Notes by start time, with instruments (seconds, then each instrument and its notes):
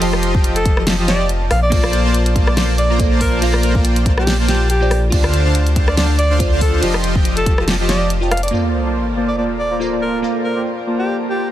Already playing: sub bass F1, synth keys D#5 G5 A5
0.00 supersaw synth F3 F4 G4 D#5 C6, synth keys F4 C5 D#5 G5 A5, closed hi-hat, crash
0.13 cross-stick
0.23 closed hi-hat
0.35 supersaw synth F4 G4 D#5 G5, kick
0.44 closed hi-hat
0.56 alto saxophone A4, closed hi-hat
0.65 supersaw synth F3 F4 G4 D#5 A5, kick, closed hi-hat
0.77 cross-stick
0.87 snare, closed hi-hat, crash
1.07 supersaw synth F3 F4 G4 D#5 A5, synth keys F4 C5 D#5 G5 A5, alto saxophone D5, snare, closed hi-hat
1.19 synth keys F4 C5 D#5 G5 A5
1.29 closed hi-hat
1.51 sub bass A#1, alto saxophone F5, cross-stick, open hi-hat
1.62 alto saxophone D5
1.70 synth keys A#3 F4 A4 C5, supersaw synth A#3 F4 C5 D5 A5, kick, closed hi-hat, crash
1.74 synth keys D5
1.84 cross-stick
1.93 closed hi-hat
2.05 supersaw synth A#3 F4 C5 D5 A5
2.14 closed hi-hat
2.26 closed hi-hat
2.36 supersaw synth A#3 F4 C5 D5 A5, kick, closed hi-hat
2.47 alto saxophone D5, cross-stick
2.57 supersaw synth A#3 F4 C5 D5 A5, alto saxophone D5, snare, closed hi-hat, crash
2.78 alto saxophone D5, closed hi-hat
2.90 supersaw synth A#3 F4 C5 D5 A#5
2.99 synth keys A#3 F4 A4 C5 D5, kick, closed hi-hat
3.11 supersaw synth A#3 F4 C5 D5 A5
3.21 alto saxophone A#4, kick, open hi-hat
3.41 synth keys A#3 F4 A4 C5 F5, supersaw synth A#3 F4 C5 D5 A#5, closed hi-hat, crash
3.54 cross-stick
3.63 alto saxophone A#4, closed hi-hat
3.75 supersaw synth A#3 F4 C5 D5 G5, kick
3.85 closed hi-hat
3.96 closed hi-hat
4.06 supersaw synth A#3 F4 C5 D5 A5, kick, closed hi-hat
4.18 alto saxophone G4, cross-stick
4.27 snare, closed hi-hat, crash
4.48 supersaw synth A#3 F4 C5 D5 A5, alto saxophone G4, snare, closed hi-hat
4.70 alto saxophone G4, closed hi-hat
4.80 synth keys A#3 F4 A4 C5 D5
4.91 cross-stick, open hi-hat
5.10 sub bass D2, supersaw synth D3 D4 C5 F5 A5, synth keys F4 C5, kick, closed hi-hat, crash
5.14 synth keys D5
5.24 cross-stick
5.34 closed hi-hat
5.45 supersaw synth D3 D4 C5 F5 A5
5.55 closed hi-hat
5.67 closed hi-hat
5.76 supersaw synth D3 D4 C5 F5 A5, kick, closed hi-hat
5.88 alto saxophone D5, cross-stick
5.97 supersaw synth D3 D4 C5 F5 A5, alto saxophone D5, snare, closed hi-hat, crash
6.19 alto saxophone D5, closed hi-hat
6.30 supersaw synth D3 D4 C5 F5 C6
6.39 synth keys F4 C5 D5, kick, closed hi-hat
6.52 supersaw synth D3 D4 C5 F5 A5
6.61 alto saxophone A4, kick, open hi-hat
6.81 sub bass F1, supersaw synth F3 F4 G4 D#5 C6, synth keys F4 C5 D#5 G5 A5, closed hi-hat, crash
6.94 cross-stick
7.04 closed hi-hat
7.15 supersaw synth F4 G4 D#5 G5, kick
7.25 closed hi-hat
7.37 alto saxophone A4, closed hi-hat
7.46 supersaw synth F3 F4 G4 D#5 A5, kick, closed hi-hat
7.58 cross-stick
7.68 snare, closed hi-hat, crash
7.89 supersaw synth F3 F4 G4 D#5 A5, alto saxophone D5, snare, closed hi-hat
8.10 closed hi-hat
8.21 synth keys F4 C5 D#5 G5 A5
8.31 alto saxophone F5, cross-stick, closed hi-hat
8.37 closed hi-hat
8.43 alto saxophone D5, closed hi-hat
8.48 synth keys A#3 F4, closed hi-hat
8.53 supersaw synth A#3 F4 C5 D5 A5, synth keys A4 C5 D5, sub drop
8.86 supersaw synth A#3 F4 C5 D5 A5
9.17 supersaw synth A#3 F4 C5 D5 A5
9.28 alto saxophone D5
9.38 supersaw synth A#3 F4 C5 D5 A5, alto saxophone D5
9.59 alto saxophone D5
9.71 supersaw synth A#3 F4 C5 D5 A#5
9.79 synth keys A#3 F4 A4 C5 D5
9.92 supersaw synth A#3 F4 C5 D5 A5
10.02 alto saxophone A#4
10.22 synth keys A#3 F4 A4 C5 F5, supersaw synth A#3 F4 C5 D5 A#5
10.44 alto saxophone A#4
10.56 supersaw synth A#3 F4 C5 D5 G5
10.87 supersaw synth A#3 F4 C5 D5 A5
10.98 alto saxophone G4
11.29 supersaw synth A#3 F4 C5 D5 A5, alto saxophone G4